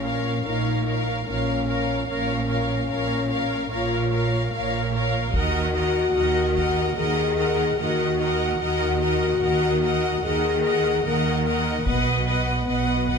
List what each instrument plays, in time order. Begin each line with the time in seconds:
Already playing: double bass section A#1, cello section A#2, french horn section C#4
0.04 viola section A#4, violin section C#5 F5
0.45 double bass section A#1, cello section A#2, french horn section D#4, viola section A#4, violin section C#5 F5
0.85 viola section A#4, violin section C#5 F5
1.27 double bass section A#1, cello section A#2, french horn section C#4, viola section A#4, violin section C#5 F5
1.67 viola section A#4, violin section C#5 F5
2.08 double bass section A#1, cello section A#2, french horn section C#4, viola section A#4, violin section C#5 F5
2.49 viola section A#4, violin section C#5 F5
2.89 double bass section A#1, cello section A#2, viola section A#4, violin section C#5 F5
3.29 viola section A#4, violin section C#5 F5
3.70 double bass section A#1, cello section A#2, french horn section F4, viola section A#4, violin section C#5 F5
4.11 viola section A#4, violin section C#5 F5
4.53 double bass section A#1, cello section A#2, viola section A#4, violin section C#5 F5
4.94 viola section A#4, violin section C#5 F5
5.33 double bass section D#2, cello section D#3, french horn section F#4, viola section A#4, violin section D#5 F#5, taiko
5.75 viola section A#4, violin section D#5 F#5
6.13 double bass section D#2, cello section D#3, viola section A#4, violin section D#5 F#5
6.55 viola section A#4, violin section D#5 F#5, taiko
6.96 double bass section D#2, cello section D#3, french horn section G#4, viola section A#4, violin section D#5 F#5
7.37 viola section A#4, violin section D#5 F#5
7.77 double bass section D#2, cello section D#3, french horn section F#4, viola section A#4, violin section D#5 F#5
8.19 viola section A#4, violin section D#5 F#5
8.59 double bass section D#2, cello section D#3, french horn section F#4, viola section A#4, violin section D#5 F#5
9.02 viola section A#4, violin section D#5 F#5
9.40 double bass section D#2, cello section D#3, viola section A#4, violin section D#5 F#5
9.82 viola section A#4, violin section D#5 F#5
10.22 double bass section D#2, cello section D#3, french horn section G#4, viola section A#4, violin section D#5 F#5
10.64 viola section A#4, violin section D#5 F#5
11.05 double bass section D#2, cello section D#3, french horn section A#3, viola section A#4, violin section D#5 F#5
11.45 viola section A#4, violin section D#5 F#5
11.85 double bass section B1, cello section B2, french horn section B3, viola section B4, violin section D#5 F#5, taiko
12.27 viola section B4, violin section D#5 F#5
12.67 double bass section B1, cello section B2, viola section B4, violin section D#5 F#5
13.08 viola section B4, violin section D#5 F#5, taiko